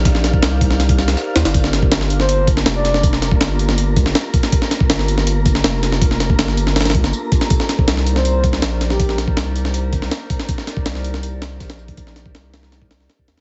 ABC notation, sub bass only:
X:1
M:4/4
L:1/16
Q:1/4=161
K:Cdor
V:1 name="Sub bass" clef=bass
B,,,4 C,,8 z2 E,, G,,,- | G,,,4 G,,,8 F,,,4- | F,,,4 G,,,6 D,, G,,, z4 | z4 G,,,8 F,,,4- |
F,,,4 G,,,6 D,, G,,, z4 | z4 C,,8 B,,,4- | B,,,4 C,,6 G,,, C,, z4 | z4 C,,8 B,,,4- |
B,,,4 C,,8 z2 E,, z |]